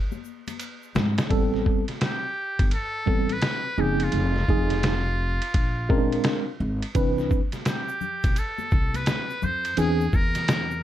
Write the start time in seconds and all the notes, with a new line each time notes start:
0.12 high conga, shaker
0.24 shaker
0.48 ride, high conga, shaker
0.59 hi-hat pedal, ride, shaker
0.83 shaker
0.95 G#2, snare, low conga, shaker
1.17 snare, ride, shaker
1.30 A1 G3 B3 C4 A4, kick, ride
1.54 snare
1.66 kick
1.88 snare, ride
2.01 G4, snare, hi-hat pedal, ride
2.59 G1, kick, ride
2.71 A4, ride
3.06 A1 G3 B3 C4 A4, kick
3.29 B4, ride
3.42 snare, hi-hat pedal, ride
3.78 F#1 F3 C4 D#4 G4 G#4
4.00 F4, ride
4.12 F1, ride
4.36 snare
4.48 F1 F3 C4 D#4 G#4, kick
4.70 snare, ride
4.83 snare, hi-hat pedal, ride
5.42 ride
5.54 A#1, kick, ride
5.89 G#3 C4 C#4 A#4, kick
5.96 D4
6.12 ride
6.24 snare, hi-hat pedal, ride
6.60 G#1
6.82 ride
6.95 C2 E3 C4 D4 B4, kick, ride, shaker
7.18 snare, shaker
7.31 kick, high conga, shaker
7.52 snare, ride, shaker
7.65 G4, snare, hi-hat pedal, ride, shaker
7.89 shaker
8.01 low conga, shaker
8.23 B1, kick, ride, shaker
8.36 A4, ride, shaker
8.58 high conga, shaker
8.71 C2, kick, shaker
8.94 B4, ride, high conga, shaker
9.06 snare, hi-hat pedal, ride, shaker
9.30 shaker
9.42 F2 C5, low conga, shaker
9.64 ride, shaker
9.77 E2 E3 C4 D4 G#4, ride, shaker
10.01 shaker
10.13 E2 A#4, kick, high conga, shaker
10.35 snare, ride, shaker
10.48 snare, hi-hat pedal, ride, shaker
10.71 shaker